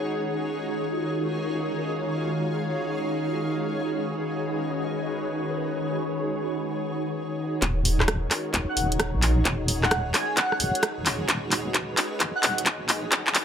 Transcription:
Already playing: string machine D#4 F#4 G#4 B4, ambient pad D#4 G#4 C#5 F#5
0.30 string machine D#3 F4 A#4 C#5
0.91 ambient pad F5
3.73 string machine D#3 G#4 B4 D#5
5.56 string machine C#5
7.62 wobble bass D#1, string machine D#4 F#4 A#4 C#5, ambient pad G#4, kick, clap, closed hi-hat
7.72 ambient pad C#5
7.85 open hi-hat
8.00 cross-stick, clap
8.08 kick, cross-stick, closed hi-hat
8.31 cross-stick, clap, open hi-hat
8.54 wobble bass D#1, kick, clap, closed hi-hat
8.69 digital synth lead F#5
8.77 wobble bass D#1, open hi-hat
8.92 closed hi-hat
9.00 kick, cross-stick, closed hi-hat
9.15 wobble bass A#1
9.22 clap, open hi-hat
9.45 wobble bass D#1, kick, clap, closed hi-hat
9.68 open hi-hat
9.83 digital synth lead F#5, cross-stick, clap
9.91 kick, cross-stick, closed hi-hat
10.14 digital synth lead G#5, cross-stick, clap, open hi-hat
10.37 digital synth lead F#5, kick, clap, closed hi-hat
10.52 cross-stick
10.60 wobble bass D#1, open hi-hat
10.75 closed hi-hat
10.83 kick, cross-stick, closed hi-hat
10.98 wobble bass D#1
11.06 string machine D#4 G#4 B4, clap, open hi-hat
11.29 wobble bass D#1, kick, clap, closed hi-hat
11.52 clap, open hi-hat
11.74 kick, clap, closed hi-hat
11.97 clap, open hi-hat
12.20 wobble bass D#1, kick, clap, closed hi-hat
12.35 digital synth lead F#5
12.43 wobble bass D#1, clap, open hi-hat
12.58 closed hi-hat
12.66 kick, clap, closed hi-hat
12.81 wobble bass A#1
12.89 string machine A#4, clap, open hi-hat
13.12 wobble bass D#1, kick, clap, closed hi-hat
13.27 clap
13.35 clap, open hi-hat

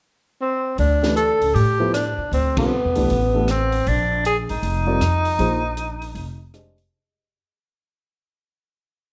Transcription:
0.41 tenor saxophone C4
0.78 upright bass D2, tenor saxophone D4, open hi-hat
1.03 grand piano E3 A3 D4 G4 B4, snare
1.16 tenor saxophone A4, closed hi-hat
1.41 upright bass C#2, open hi-hat
1.55 upright bass A2, tenor saxophone G4, open hi-hat
1.79 grand piano F3 B3 E4 A4 C5
1.94 tenor saxophone D4, cross-stick, closed hi-hat
2.18 muted upright bass stroke
2.31 upright bass D2, tenor saxophone C4, open hi-hat
2.57 grand piano D3 G3 C4 F4 A4, tenor saxophone B3, kick, ride
2.85 upright bass E2
2.96 upright bass C2, grand piano E3 A3 D4 G4 B4, open hi-hat
3.10 upright bass A1, open hi-hat
3.34 grand piano E3 A3 D4 G4 A4
3.48 tenor saxophone C4, cross-stick, closed hi-hat
3.72 open hi-hat
3.87 upright bass A#1, tenor saxophone D4, open hi-hat
4.25 tenor saxophone G#4, closed hi-hat
4.49 upright bass G#1, tenor saxophone D#4, open hi-hat
4.63 upright bass F1, open hi-hat
4.87 grand piano G3 C4 F4 A#4 D5
5.01 upright bass F2, cross-stick, closed hi-hat
5.25 open hi-hat
5.39 upright bass A#1, grand piano F3 A#3 D#4 G#4 C5, open hi-hat
5.77 closed hi-hat
6.02 open hi-hat
6.15 upright bass F1, open hi-hat
6.54 grand piano G#3 D4 G4 C5 D#5, cross-stick, closed hi-hat
6.78 open hi-hat

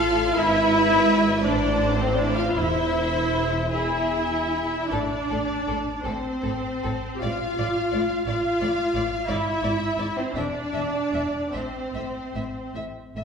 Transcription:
Already playing: double bass section A1, cello section A2, viola section F4, violin section A4 F5
0.37 double bass section G#1, cello section G#2, viola section E4, violin section B4 E5
1.43 double bass section A1, cello section A2, viola section D4, violin section C5 D5
1.97 viola section C4, violin section C5
2.15 viola section D4, violin section D5
2.34 viola section F4, violin section F5
2.52 double bass section E1, cello section E2, viola section E4, violin section C5 E5
3.71 viola section E4, violin section G#4 E5
4.90 double bass section A1, cello section A2, viola section D4, violin section A4 D5
5.30 double bass section A1, cello section A2, violin section A4
5.68 double bass section A1, cello section A2, violin section A4
5.98 viola section D4
6.04 double bass section A1, cello section A2, viola section C4, violin section A4 C5
6.43 double bass section A1, cello section A2, violin section A4
6.83 double bass section A1, cello section A2, violin section A4
7.15 viola section G4
7.22 double bass section A1, cello section A2, viola section F4, violin section D5 F5
7.58 double bass section A1, cello section A2, violin section D5
7.92 double bass section A1, cello section A2, violin section D5
8.26 double bass section A1, cello section A2, viola section F4, violin section D5 F5
8.61 double bass section A1, cello section A2, violin section D5
8.94 double bass section A1, cello section A2, violin section D5
9.28 double bass section G#1, cello section G#2, viola section E4, violin section D5 E5
9.63 double bass section G#1, cello section G#2, violin section D5
9.98 double bass section G#1, cello section G#2, violin section D5
10.18 viola section C4, violin section C5
10.35 double bass section E1, cello section E2, viola section D4, violin section D5 E5
10.73 double bass section E1, cello section E2, violin section E5
11.13 double bass section E1, cello section E2, violin section E5
11.53 double bass section A1, cello section A2, viola section C4, violin section C5 E5
11.94 double bass section A1, cello section A2, violin section E5
12.35 double bass section A1, cello section A2, violin section E5
12.75 double bass section A1, cello section A2, violin section E5
13.15 double bass section A1, cello section A2, violin section E5

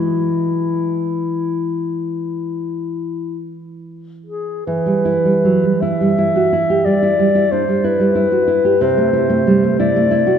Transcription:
Already playing: nylon-string guitar E3 G#3 E4, clarinet E4
4.26 clarinet G#4
4.67 nylon-string guitar E3, clarinet B4
4.86 nylon-string guitar G3
5.05 nylon-string guitar E4
5.25 nylon-string guitar G3
5.44 nylon-string guitar F#3
5.64 nylon-string guitar G3
5.81 nylon-string guitar E4, clarinet E5
6.01 nylon-string guitar G3
6.18 nylon-string guitar E4
6.36 nylon-string guitar F#4
6.53 nylon-string guitar E4
6.70 nylon-string guitar G4
6.85 nylon-string guitar G3, clarinet D5
7.03 nylon-string guitar E4
7.19 nylon-string guitar G3
7.35 nylon-string guitar E4
7.51 nylon-string guitar D4, clarinet C5
7.68 nylon-string guitar G3
7.84 nylon-string guitar E4, clarinet B4
8.00 nylon-string guitar G3
8.15 nylon-string guitar E4
8.32 nylon-string guitar F#4
8.48 nylon-string guitar E4
8.65 nylon-string guitar G4
8.81 nylon-string guitar C3, clarinet C5
8.98 nylon-string guitar A3
9.13 nylon-string guitar E4
9.29 nylon-string guitar A3
9.47 nylon-string guitar G3
9.63 nylon-string guitar A3
9.79 nylon-string guitar E4, clarinet D5
9.96 nylon-string guitar A3
10.11 nylon-string guitar E4
10.27 nylon-string guitar F#4

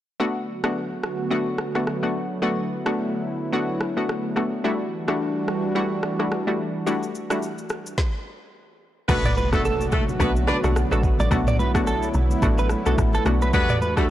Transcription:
0.20 analog synth pad D3 F#3 A3 B3 F#4, synth pluck A3 B3 D4 F#4
0.64 synth pluck A3 B3 D4 F#4, cross-stick
1.03 cross-stick
1.31 synth pluck A3 B3 D4 F#4
1.58 cross-stick
1.75 synth pluck A3 B3 D4 F#4, cross-stick
1.87 cross-stick
2.03 synth pluck A3 B3 D4 F#4
2.42 synth pluck A3 B3 D4 F#4, analog synth pad E4
2.86 synth pluck A3 B3 D4 F#4, cross-stick
3.53 synth pluck A3 B3 D4 F#4
3.81 cross-stick
3.97 synth pluck A3 B3 D4 F#4
4.09 cross-stick
4.36 synth pluck A3 B3 D4 F#4, cross-stick
4.64 analog synth pad E3 G3 D4 F#4, synth pluck G3 A3 D4 E4 F#4
5.08 synth pluck G3 A3 D4 E4 F#4, cross-stick
5.48 cross-stick
5.75 synth pluck G3 A3 D4 E4 F#4
6.03 cross-stick
6.19 synth pluck G3 A3 D4 E4 F#4, cross-stick
6.32 cross-stick
6.47 synth pluck G3 A3 D4 E4 F#4
6.86 synth pluck G3 A3 D4 E4 F#4, shaker
7.03 shaker
7.15 shaker
7.30 synth pluck G3 A3 D4 E4 F#4, cross-stick, shaker
7.43 shaker
7.58 shaker
7.69 cross-stick, shaker
7.86 shaker
7.98 kick, snare
9.08 log drum bass B1, analog synth pad D3 F#3 A3 B3 F#4, synth pluck A3 B3 D4 F#4, horn section B3 B4, kick, crash, impact, low conga, shaker
9.25 clean electric guitar D5, mid tom, shaker
9.37 clean electric guitar B4, high conga, shaker
9.52 synth pluck A3 B3 D4 F#4, horn section A3 A4, kick, cross-stick, shaker
9.65 clean electric guitar A4, shaker
9.81 shaker
9.92 log drum bass A1, horn section A3 A4, kick, cross-stick, high conga, shaker
10.08 high conga, shaker
10.20 log drum bass B1, synth pluck A3 B3 D4 F#4, horn section B3 B4, kick, shaker
10.36 shaker
10.48 horn section D4 D5, clean electric guitar B4, cross-stick, high conga, shaker
10.63 log drum bass B1, synth pluck A3 B3 D4 F#4, cross-stick, shaker
10.76 cross-stick, shaker
10.91 log drum bass A1, synth pluck A3 B3 D4 F#4, clean electric guitar A4, high conga, shaker
11.03 kick, low conga, shaker
11.20 log drum bass A1, clean electric guitar D5, high conga, shaker
11.31 log drum bass B1, synth pluck A3 B3 D4 F#4, analog synth pad E4, kick, low conga, shaker
11.47 clean electric guitar D5, mid tom, shaker
11.59 clean electric guitar B4, high conga, shaker
11.74 synth pluck A3 B3 D4 F#4, kick, cross-stick, shaker
11.87 clean electric guitar A4, shaker
12.03 shaker
12.14 log drum bass B1, high conga, shaker
12.30 high conga, shaker
12.42 log drum bass A1, synth pluck A3 B3 D4 F#4, kick, shaker
12.58 clean electric guitar B4, shaker
12.69 cross-stick, high conga, shaker
12.86 log drum bass B1, synth pluck A3 B3 D4 F#4, clean electric guitar A4, shaker
12.98 log drum bass A1, kick, cross-stick, shaker
13.13 clean electric guitar A4, high conga, shaker
13.25 log drum bass B1, synth pluck A3 B3 D4 F#4, cross-stick, low conga, shaker
13.42 clean electric guitar B4, high conga, shaker
13.53 log drum bass E2, analog synth pad E3 G3 D4 F#4, synth pluck G3 A3 D4 F#4, horn section B3 B4, kick, low conga, shaker
13.69 clean electric guitar D5, mid tom, shaker
13.82 clean electric guitar B4, high conga, shaker
13.97 synth pluck G3 A3 D4 F#4, horn section A3 A4, kick, cross-stick, shaker

